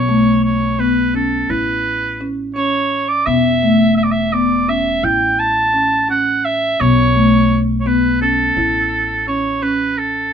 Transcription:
Already playing: B1 C#5
0.09 A3
0.44 C#5
0.79 B3 B4
1.14 C#4 A4
1.50 A1 E4 B4
2.21 C#4
2.56 C#4 C#5
3.08 D5
3.26 E1 B3 E5
3.63 A3
3.97 E5
4.03 D5
4.11 E5
4.33 B3 D5
4.69 C#4 E5
5.03 A1 E4 G5
5.39 A5
5.74 C#4
6.09 C#4 F#5
6.45 E5
6.80 B1 B3 C#5
7.15 A3
7.80 C#5
7.86 B3 B4
8.22 C#4 A4
8.57 A1 E4
9.28 C#4 C#5
9.62 C#4 B4
9.98 A4

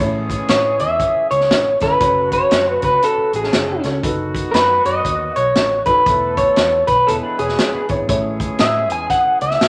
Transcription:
Already playing: G#3 G#4
0.00 A1 A2 E3 A3 C#4 E4 C#5
0.30 kick, closed hi-hat
0.48 A2 C#5, snare, closed hi-hat
0.79 E2 E5, closed hi-hat
1.00 kick, closed hi-hat
1.15 muted fingered electric bass stroke
1.31 C#2 C#5, closed hi-hat
1.41 snare
1.51 A1, snare, closed hi-hat
1.80 G1 C#4 E4 A4 B4 C#5, kick, snare, closed hi-hat
1.99 F#1 C#3 F#3 A3 C#4 F#4 A4 C#5, kick, closed hi-hat
2.32 C#5, kick, closed hi-hat
2.51 F#2, snare, closed hi-hat
2.82 C#2 B4, kick, closed hi-hat
3.02 A4, closed hi-hat
3.18 muted fingered electric bass stroke
3.33 A1 G#4, closed hi-hat
3.43 C#4 A4, snare
3.52 F#1 E4 C#5, snare, closed hi-hat
3.68 C#4 A4
3.83 C#2 C#4 F#4 A4 C#5, snare, closed hi-hat
4.03 F#1 D#3 F#3 B3 D#4 F#4 A4 B4, kick, closed hi-hat
4.35 kick, closed hi-hat
4.51 F#2 A#4 B4, snare, closed hi-hat
4.85 F#2 D#5, closed hi-hat
5.05 D#2, kick, closed hi-hat
5.36 B1 C#5, closed hi-hat
5.55 A1, snare, closed hi-hat
5.86 F1 D#4 F#4 A4 B4, kick, closed hi-hat
6.06 E1 E3 A3 B3 E4 A4 B4, kick, closed hi-hat
6.37 C#5, kick, closed hi-hat
6.56 E2, snare, closed hi-hat
6.87 B1 B4, kick, closed hi-hat
7.07 E1 E3 G#3 B3 E4 G#4 A4 B4, closed hi-hat
7.23 D4 B4
7.38 E1 E4 G#4 C#5, closed hi-hat
7.48 F#4 D5, snare
7.58 E4 C#5, snare, closed hi-hat
7.74 D4 B4, muted fingered electric bass stroke
7.88 G#1 B3 E4 G#4 C#5, kick, closed hi-hat
8.07 A1 A2 E3 G#3 A3 C#4 E4 G#4 C#5, kick, closed hi-hat
8.40 kick, closed hi-hat
8.59 A2 E5, snare, closed hi-hat
8.90 E2 G#5, closed hi-hat
9.10 F#5, kick, closed hi-hat
9.26 muted fingered electric bass stroke
9.41 C#2 E5, closed hi-hat
9.51 snare
9.61 A1, snare, closed hi-hat

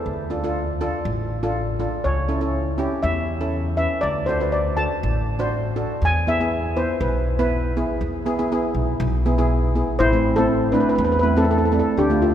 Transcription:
Already playing: A4
0.06 D2
0.30 D4 F4 A4
0.44 D4 F4 A4
0.81 D4 F4 A4
1.05 A1
1.43 D4 F4 A4
1.79 D4 F4 A4
2.04 C#2 C#5
2.28 C#4 E4 A4
2.41 C#4 E4 A4
2.78 C#4 E4 G4
3.03 E2 E5
3.41 C#4 E4 A4
3.77 C#4 E4 B4 E5
4.01 D2 D5
4.26 D4 F#4 A4 C5
4.40 D4 F#4 B4
4.52 D5
4.77 D4 F#4 A4 A5
5.03 A1
5.39 D4 F#4 C5
5.76 D4 F#4 A4
6.02 E2 G#5
6.27 B3 E4 G#4 E5
6.40 B3 E4 G#4
6.76 B3 E4 B4 C5
7.00 B1 B4
7.39 B3 E4 B4
7.77 B3 E4 G#4
8.01 E2
8.26 B3 E4 G#4
8.39 B3 E4 G#4
8.52 B3 E4 G#4
8.74 B1
9.00 B1
9.26 B3 E4 G#4
9.38 B3 E4 G#4
9.75 B3 E4 G#4
9.99 A1 E4 C5
10.13 A3 C4 E4
10.36 A3 C4 E4 A4
10.72 A3 C4 D4 E4 B4
10.80 B4
10.89 B4
10.95 E2 B4
11.05 B4
11.12 B4
11.19 A3 C4 E4 B4
11.36 A3 C4 E4 A4
11.44 A4
11.51 A4
11.58 A4
11.65 A4
11.72 A3 C4 D4 A4
11.79 A4
11.97 D2 D4 G4
12.10 A3 D4 F4
12.22 F4 A4
12.30 F4

